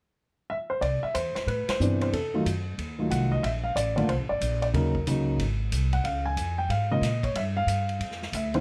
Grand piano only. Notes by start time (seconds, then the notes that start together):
0.50 E5
0.70 C5
0.81 D5
1.03 E5
1.15 C5
1.35 C5
1.48 B4
1.70 C5
1.80 C3 E3 B3 D4
2.02 C5
2.13 A4
2.34 D#3 F#3 A3 F4
2.99 D#3 F#3 A3 F4
3.11 F#5
3.32 D#5
3.43 E5
3.64 F5
3.76 D5
3.96 D3 A3 A#3 F4 D5
4.09 C5
4.29 D5
4.62 D5
4.73 C#3 F#3 A#3 D#4 A#4
5.07 C#3 F#3 A#3 D#4
5.93 F#5
6.04 F5
6.26 G#5
6.58 G5
6.70 F5
6.91 C#3 G#3 A#3 F4 D#5
7.24 C#5
7.36 E5
7.57 F5
8.35 E5
8.54 D3 B3 C4 E4 C5